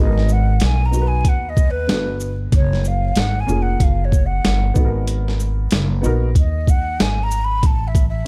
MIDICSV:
0, 0, Header, 1, 5, 480
1, 0, Start_track
1, 0, Tempo, 638298
1, 1899, Time_signature, 4, 2, 24, 8
1, 6222, End_track
2, 0, Start_track
2, 0, Title_t, "Flute"
2, 0, Program_c, 0, 73
2, 0, Note_on_c, 0, 75, 90
2, 240, Note_on_c, 0, 78, 82
2, 251, Note_off_c, 0, 75, 0
2, 482, Note_on_c, 0, 80, 101
2, 493, Note_off_c, 0, 78, 0
2, 638, Note_on_c, 0, 82, 98
2, 650, Note_off_c, 0, 80, 0
2, 804, Note_on_c, 0, 80, 93
2, 815, Note_off_c, 0, 82, 0
2, 962, Note_on_c, 0, 78, 90
2, 973, Note_off_c, 0, 80, 0
2, 1118, Note_on_c, 0, 75, 94
2, 1129, Note_off_c, 0, 78, 0
2, 1279, Note_on_c, 0, 71, 102
2, 1290, Note_off_c, 0, 75, 0
2, 1749, Note_off_c, 0, 71, 0
2, 1917, Note_on_c, 0, 73, 92
2, 2157, Note_on_c, 0, 77, 84
2, 2168, Note_off_c, 0, 73, 0
2, 2396, Note_on_c, 0, 78, 95
2, 2407, Note_off_c, 0, 77, 0
2, 2553, Note_on_c, 0, 80, 84
2, 2565, Note_off_c, 0, 78, 0
2, 2719, Note_on_c, 0, 78, 86
2, 2731, Note_off_c, 0, 80, 0
2, 2878, Note_on_c, 0, 77, 77
2, 2889, Note_off_c, 0, 78, 0
2, 3039, Note_on_c, 0, 73, 89
2, 3051, Note_off_c, 0, 77, 0
2, 3200, Note_on_c, 0, 78, 94
2, 3211, Note_off_c, 0, 73, 0
2, 3669, Note_off_c, 0, 78, 0
2, 4797, Note_on_c, 0, 75, 79
2, 5031, Note_on_c, 0, 78, 97
2, 5042, Note_off_c, 0, 75, 0
2, 5272, Note_on_c, 0, 80, 95
2, 5283, Note_off_c, 0, 78, 0
2, 5435, Note_on_c, 0, 82, 111
2, 5446, Note_off_c, 0, 80, 0
2, 5594, Note_on_c, 0, 83, 102
2, 5605, Note_off_c, 0, 82, 0
2, 5755, Note_on_c, 0, 81, 106
2, 5766, Note_off_c, 0, 83, 0
2, 5918, Note_on_c, 0, 76, 87
2, 5929, Note_off_c, 0, 81, 0
2, 6068, Note_off_c, 0, 76, 0
2, 6082, Note_on_c, 0, 76, 77
2, 6222, Note_off_c, 0, 76, 0
2, 6222, End_track
3, 0, Start_track
3, 0, Title_t, "Upright piano"
3, 0, Program_c, 1, 0
3, 0, Note_on_c, 1, 59, 70
3, 0, Note_on_c, 1, 63, 62
3, 0, Note_on_c, 1, 66, 61
3, 46, Note_on_c, 1, 70, 72
3, 334, Note_off_c, 1, 59, 0
3, 339, Note_off_c, 1, 63, 0
3, 343, Note_off_c, 1, 66, 0
3, 373, Note_off_c, 1, 70, 0
3, 685, Note_on_c, 1, 59, 62
3, 695, Note_on_c, 1, 63, 57
3, 704, Note_on_c, 1, 66, 60
3, 714, Note_on_c, 1, 70, 58
3, 764, Note_on_c, 1, 71, 70
3, 768, Note_off_c, 1, 70, 0
3, 1376, Note_off_c, 1, 59, 0
3, 1381, Note_off_c, 1, 63, 0
3, 1386, Note_off_c, 1, 66, 0
3, 1407, Note_on_c, 1, 59, 62
3, 1416, Note_off_c, 1, 71, 0
3, 1416, Note_on_c, 1, 62, 54
3, 1427, Note_on_c, 1, 66, 54
3, 1436, Note_on_c, 1, 69, 63
3, 1713, Note_off_c, 1, 59, 0
3, 1718, Note_off_c, 1, 62, 0
3, 1723, Note_off_c, 1, 66, 0
3, 1728, Note_off_c, 1, 69, 0
3, 2606, Note_on_c, 1, 58, 70
3, 2615, Note_on_c, 1, 61, 65
3, 2626, Note_on_c, 1, 65, 63
3, 2636, Note_on_c, 1, 68, 72
3, 3297, Note_off_c, 1, 58, 0
3, 3301, Note_off_c, 1, 61, 0
3, 3307, Note_off_c, 1, 65, 0
3, 3312, Note_off_c, 1, 68, 0
3, 3564, Note_on_c, 1, 59, 78
3, 3575, Note_on_c, 1, 63, 69
3, 3585, Note_on_c, 1, 66, 64
3, 3595, Note_on_c, 1, 69, 61
3, 3644, Note_on_c, 1, 70, 78
3, 3648, Note_off_c, 1, 69, 0
3, 4352, Note_off_c, 1, 59, 0
3, 4357, Note_off_c, 1, 63, 0
3, 4362, Note_off_c, 1, 66, 0
3, 4392, Note_off_c, 1, 70, 0
3, 4524, Note_on_c, 1, 59, 81
3, 4535, Note_on_c, 1, 63, 75
3, 4545, Note_on_c, 1, 66, 75
3, 4554, Note_on_c, 1, 70, 89
3, 4718, Note_off_c, 1, 59, 0
3, 4724, Note_off_c, 1, 63, 0
3, 4728, Note_off_c, 1, 66, 0
3, 4733, Note_off_c, 1, 70, 0
3, 6222, End_track
4, 0, Start_track
4, 0, Title_t, "Upright bass"
4, 0, Program_c, 2, 32
4, 0, Note_on_c, 2, 32, 100
4, 434, Note_off_c, 2, 32, 0
4, 465, Note_on_c, 2, 35, 98
4, 918, Note_off_c, 2, 35, 0
4, 939, Note_on_c, 2, 39, 96
4, 1395, Note_off_c, 2, 39, 0
4, 1421, Note_on_c, 2, 31, 106
4, 1876, Note_off_c, 2, 31, 0
4, 1900, Note_on_c, 2, 30, 97
4, 2355, Note_off_c, 2, 30, 0
4, 2379, Note_on_c, 2, 32, 91
4, 2607, Note_off_c, 2, 32, 0
4, 2620, Note_on_c, 2, 29, 86
4, 2847, Note_off_c, 2, 29, 0
4, 2860, Note_on_c, 2, 30, 101
4, 3315, Note_off_c, 2, 30, 0
4, 3342, Note_on_c, 2, 31, 85
4, 3568, Note_off_c, 2, 31, 0
4, 3579, Note_on_c, 2, 32, 90
4, 4269, Note_off_c, 2, 32, 0
4, 4303, Note_on_c, 2, 30, 99
4, 4529, Note_off_c, 2, 30, 0
4, 4541, Note_on_c, 2, 34, 89
4, 4768, Note_off_c, 2, 34, 0
4, 4779, Note_on_c, 2, 39, 88
4, 5235, Note_off_c, 2, 39, 0
4, 5259, Note_on_c, 2, 32, 82
4, 5715, Note_off_c, 2, 32, 0
4, 5739, Note_on_c, 2, 33, 99
4, 6195, Note_off_c, 2, 33, 0
4, 6222, End_track
5, 0, Start_track
5, 0, Title_t, "Drums"
5, 133, Note_on_c, 9, 38, 35
5, 208, Note_off_c, 9, 38, 0
5, 217, Note_on_c, 9, 82, 44
5, 292, Note_off_c, 9, 82, 0
5, 451, Note_on_c, 9, 42, 77
5, 462, Note_on_c, 9, 38, 100
5, 526, Note_off_c, 9, 42, 0
5, 538, Note_off_c, 9, 38, 0
5, 699, Note_on_c, 9, 82, 51
5, 774, Note_off_c, 9, 82, 0
5, 937, Note_on_c, 9, 36, 89
5, 938, Note_on_c, 9, 42, 84
5, 1012, Note_off_c, 9, 36, 0
5, 1013, Note_off_c, 9, 42, 0
5, 1179, Note_on_c, 9, 36, 92
5, 1183, Note_on_c, 9, 82, 45
5, 1254, Note_off_c, 9, 36, 0
5, 1258, Note_off_c, 9, 82, 0
5, 1422, Note_on_c, 9, 38, 106
5, 1423, Note_on_c, 9, 42, 61
5, 1498, Note_off_c, 9, 38, 0
5, 1498, Note_off_c, 9, 42, 0
5, 1657, Note_on_c, 9, 82, 52
5, 1732, Note_off_c, 9, 82, 0
5, 1898, Note_on_c, 9, 36, 104
5, 1898, Note_on_c, 9, 42, 70
5, 1973, Note_off_c, 9, 36, 0
5, 1973, Note_off_c, 9, 42, 0
5, 2055, Note_on_c, 9, 38, 30
5, 2130, Note_off_c, 9, 38, 0
5, 2140, Note_on_c, 9, 82, 43
5, 2215, Note_off_c, 9, 82, 0
5, 2372, Note_on_c, 9, 42, 75
5, 2384, Note_on_c, 9, 38, 109
5, 2448, Note_off_c, 9, 42, 0
5, 2459, Note_off_c, 9, 38, 0
5, 2622, Note_on_c, 9, 82, 46
5, 2697, Note_off_c, 9, 82, 0
5, 2858, Note_on_c, 9, 36, 92
5, 2860, Note_on_c, 9, 42, 85
5, 2933, Note_off_c, 9, 36, 0
5, 2936, Note_off_c, 9, 42, 0
5, 3100, Note_on_c, 9, 36, 87
5, 3105, Note_on_c, 9, 82, 45
5, 3175, Note_off_c, 9, 36, 0
5, 3180, Note_off_c, 9, 82, 0
5, 3343, Note_on_c, 9, 38, 106
5, 3344, Note_on_c, 9, 42, 63
5, 3418, Note_off_c, 9, 38, 0
5, 3419, Note_off_c, 9, 42, 0
5, 3576, Note_on_c, 9, 82, 52
5, 3578, Note_on_c, 9, 36, 104
5, 3651, Note_off_c, 9, 82, 0
5, 3653, Note_off_c, 9, 36, 0
5, 3816, Note_on_c, 9, 42, 81
5, 3891, Note_off_c, 9, 42, 0
5, 3972, Note_on_c, 9, 38, 33
5, 4048, Note_off_c, 9, 38, 0
5, 4059, Note_on_c, 9, 82, 40
5, 4134, Note_off_c, 9, 82, 0
5, 4291, Note_on_c, 9, 42, 75
5, 4303, Note_on_c, 9, 38, 108
5, 4367, Note_off_c, 9, 42, 0
5, 4379, Note_off_c, 9, 38, 0
5, 4541, Note_on_c, 9, 82, 48
5, 4616, Note_off_c, 9, 82, 0
5, 4777, Note_on_c, 9, 36, 82
5, 4780, Note_on_c, 9, 42, 89
5, 4852, Note_off_c, 9, 36, 0
5, 4855, Note_off_c, 9, 42, 0
5, 5019, Note_on_c, 9, 36, 82
5, 5024, Note_on_c, 9, 82, 47
5, 5094, Note_off_c, 9, 36, 0
5, 5099, Note_off_c, 9, 82, 0
5, 5265, Note_on_c, 9, 38, 117
5, 5265, Note_on_c, 9, 42, 65
5, 5340, Note_off_c, 9, 38, 0
5, 5340, Note_off_c, 9, 42, 0
5, 5498, Note_on_c, 9, 82, 59
5, 5574, Note_off_c, 9, 82, 0
5, 5737, Note_on_c, 9, 36, 98
5, 5738, Note_on_c, 9, 42, 76
5, 5813, Note_off_c, 9, 36, 0
5, 5813, Note_off_c, 9, 42, 0
5, 5976, Note_on_c, 9, 36, 86
5, 5980, Note_on_c, 9, 42, 38
5, 5980, Note_on_c, 9, 82, 39
5, 6051, Note_off_c, 9, 36, 0
5, 6055, Note_off_c, 9, 42, 0
5, 6055, Note_off_c, 9, 82, 0
5, 6222, End_track
0, 0, End_of_file